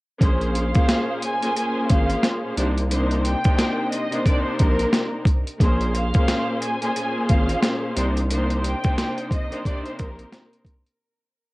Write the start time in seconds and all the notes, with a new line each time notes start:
0.20 A#1 A#2 A#3 C#4 G#4 C5, kick, closed hi-hat
0.41 closed hi-hat
0.54 F5, closed hi-hat
0.73 A#2 A#3 C#4 G#4 C5, kick, closed hi-hat
0.89 snare, closed hi-hat
1.22 G#5, closed hi-hat
1.41 A#2 A#3 C#4 G#4 C5, closed hi-hat
1.55 A#2 A#3 C#4 G#4 C5, closed hi-hat
1.90 G#1 F5, kick, closed hi-hat
2.10 closed hi-hat
2.23 snare, closed hi-hat
2.56 C2 C3 A#3 D4 D#4 C5, closed hi-hat
2.78 closed hi-hat
2.90 C3 A#3 D4 D#4 C5, closed hi-hat
3.11 closed hi-hat
3.25 G5, closed hi-hat
3.43 C3 A#3 D4 D#4 C5, kick, closed hi-hat
3.59 snare, closed hi-hat
3.92 D#5, closed hi-hat
4.11 C3 A#3 D4 D#4 C5, closed hi-hat
4.24 C3 A#3 D4 D#4 C5 D5, kick, closed hi-hat
4.44 C5
4.57 A#1 A#4, kick, closed hi-hat
4.79 closed hi-hat
4.93 snare, closed hi-hat
5.25 kick, closed hi-hat
5.47 closed hi-hat
5.59 A#1 A#2 A#3 C#4 G#4 C5, kick, closed hi-hat
5.81 closed hi-hat
5.94 F5, closed hi-hat
6.12 A#2 A#3 C#4 G#4 C5, kick, closed hi-hat
6.28 snare, closed hi-hat
6.61 G#5, closed hi-hat
6.81 A#2 A#3 C#4 G#4 C5, closed hi-hat
6.94 A#2 A#3 C#4 G#4 C5, closed hi-hat
7.29 G#1 F5, kick, closed hi-hat
7.49 closed hi-hat
7.62 snare, closed hi-hat
7.95 C2 C3 A#3 D4 D#4 C5, closed hi-hat
8.17 closed hi-hat
8.29 C3 A#3 D4 D#4 C5, closed hi-hat
8.50 closed hi-hat
8.63 G5, closed hi-hat
8.82 C3 A#3 D4 D#4 C5, kick, closed hi-hat
8.98 snare, closed hi-hat
9.18 closed hi-hat
9.31 D#5, kick, closed hi-hat
9.50 C3 A#3 D4 D#4 C5, closed hi-hat
9.63 C3 A#3 D4 D#4 C5 D5, kick, closed hi-hat
9.85 C5, closed hi-hat
9.99 A#1 A#4, kick, closed hi-hat
10.19 closed hi-hat
10.32 snare, closed hi-hat
10.53 closed hi-hat
10.65 kick, closed hi-hat
10.87 closed hi-hat